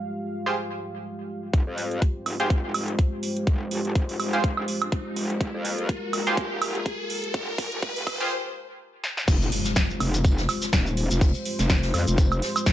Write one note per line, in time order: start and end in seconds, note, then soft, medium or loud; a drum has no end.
0.00 1.50 G#3 medium
0.00 1.50 F4 medium
0.00 1.50 G4 medium
0.00 1.52 F5 medium
0.46 0.55 F4 medium
0.46 0.55 G4 medium
0.46 0.55 G#4 medium
0.46 0.55 C5 medium
1.53 1.65 F1 medium
1.53 8.27 G#3 medium
1.53 8.27 F4 medium
1.53 8.27 G4 medium
1.53 5.37 C5 medium
1.53 kick loud
1.53 closed hi-hat medium
1.53 riser medium
1.67 2.00 F2 medium
1.78 open hi-hat loud
1.91 closed hi-hat soft
2.02 kick medium
2.02 closed hi-hat medium
2.26 2.38 F1 loud
2.26 open hi-hat loud
2.26 high woodblock medium
2.40 2.73 F1 medium
2.40 2.49 F4 medium
2.40 2.49 G4 medium
2.40 2.49 G#4 medium
2.40 2.49 C5 medium
2.40 closed hi-hat soft
2.50 kick loud
2.50 closed hi-hat medium
2.74 2.97 F1 loud
2.74 open hi-hat loud
2.74 high woodblock medium
2.88 closed hi-hat medium
2.99 kick loud
2.99 closed hi-hat medium
3.23 open hi-hat loud
3.37 closed hi-hat medium
3.47 3.70 F1 medium
3.47 kick loud
3.47 closed hi-hat medium
3.71 3.94 G1 loud
3.71 open hi-hat loud
3.85 closed hi-hat medium
3.95 4.18 F1 medium
3.95 kick loud
3.95 closed hi-hat medium
4.09 open hi-hat medium
4.20 4.42 F1 loud
4.20 open hi-hat loud
4.20 high woodblock medium
4.33 4.42 F4 medium
4.33 4.42 G4 medium
4.33 4.42 G#4 medium
4.33 4.42 C5 medium
4.33 closed hi-hat soft
4.44 4.66 F1 medium
4.44 kick loud
4.44 closed hi-hat medium
4.57 high woodblock medium
4.68 open hi-hat loud
4.82 closed hi-hat soft
4.82 high woodblock medium
4.92 kick loud
4.92 closed hi-hat medium
5.16 5.39 F1 loud
5.16 open hi-hat loud
5.30 closed hi-hat medium
5.41 5.52 F1 medium
5.41 8.28 A#4 medium
5.41 kick loud
5.41 closed hi-hat medium
5.54 5.87 F2 loud
5.65 open hi-hat loud
5.78 closed hi-hat soft
5.89 kick loud
5.89 closed hi-hat medium
6.13 6.25 F1 loud
6.13 open hi-hat loud
6.13 high woodblock medium
6.27 6.60 F1 medium
6.27 6.36 F4 medium
6.27 6.36 G4 medium
6.27 6.36 G#4 medium
6.27 6.36 C5 medium
6.27 closed hi-hat soft
6.37 kick loud
6.37 closed hi-hat medium
6.62 6.84 F1 loud
6.62 open hi-hat loud
6.62 high woodblock medium
6.75 closed hi-hat soft
6.86 kick loud
6.86 closed hi-hat medium
7.10 open hi-hat loud
7.24 closed hi-hat soft
7.34 7.57 F1 loud
7.34 kick loud
7.34 closed hi-hat medium
7.58 7.81 G1 loud
7.58 kick loud
7.58 open hi-hat loud
7.72 closed hi-hat soft
7.83 8.05 F1 loud
7.83 kick loud
7.83 closed hi-hat medium
7.96 open hi-hat medium
8.07 8.29 F1 loud
8.07 kick loud
8.07 open hi-hat loud
8.07 high woodblock medium
8.20 8.29 F4 medium
8.20 8.29 G4 medium
8.20 8.29 G#4 medium
8.20 8.29 C5 loud
8.20 closed hi-hat medium
9.04 snare medium
9.17 snare medium
9.28 9.50 F1 loud
9.28 12.73 G#3 medium
9.28 12.73 F4 medium
9.28 12.73 G4 medium
9.28 12.73 C5 medium
9.28 kick loud
9.28 closed hi-hat medium
9.28 crash loud
9.28 tambourine medium
9.28 impact medium
9.28 shekere medium
9.42 shekere soft
9.52 open hi-hat loud
9.52 tambourine medium
9.65 snare soft
9.65 closed hi-hat medium
9.65 shekere medium
9.76 kick loud
9.76 snare loud
9.76 closed hi-hat medium
9.76 tambourine medium
9.76 shekere medium
9.90 shekere soft
10.00 10.47 F1 loud
10.00 open hi-hat loud
10.00 tambourine medium
10.00 high woodblock medium
10.14 closed hi-hat medium
10.14 shekere medium
10.24 kick loud
10.24 closed hi-hat medium
10.24 tambourine medium
10.24 shekere medium
10.38 snare medium
10.38 shekere soft
10.48 snare soft
10.48 open hi-hat loud
10.48 tambourine medium
10.48 high woodblock medium
10.62 snare soft
10.62 closed hi-hat medium
10.62 shekere medium
10.73 11.09 D#1 medium
10.73 kick loud
10.73 snare loud
10.73 closed hi-hat medium
10.73 tambourine medium
10.73 shekere medium
10.86 shekere soft
10.97 open hi-hat loud
10.97 tambourine medium
11.11 11.33 F1 medium
11.11 snare soft
11.11 closed hi-hat medium
11.11 shekere medium
11.21 kick loud
11.21 closed hi-hat medium
11.21 open hi-hat medium
11.21 shekere medium
11.35 shekere soft
11.45 open hi-hat loud
11.45 tambourine medium
11.59 11.92 F1 loud
11.59 snare soft
11.59 closed hi-hat medium
11.59 shekere medium
11.69 kick loud
11.69 snare loud
11.69 closed hi-hat medium
11.69 tambourine medium
11.69 shekere medium
11.83 snare medium
11.83 open hi-hat medium
11.83 shekere soft
11.94 12.05 F2 loud
11.94 open hi-hat loud
11.94 tambourine medium
11.94 high woodblock medium
12.07 12.41 F1 loud
12.07 closed hi-hat medium
12.07 shekere medium
12.18 kick loud
12.18 closed hi-hat medium
12.18 tambourine medium
12.18 shekere medium
12.32 high woodblock medium
12.32 shekere soft
12.42 snare soft
12.42 open hi-hat loud
12.42 tambourine medium
12.56 closed hi-hat medium
12.56 high woodblock medium
12.56 shekere medium
12.66 12.73 D#1 medium
12.66 kick loud
12.66 snare loud
12.66 closed hi-hat medium
12.66 tambourine medium
12.66 shekere medium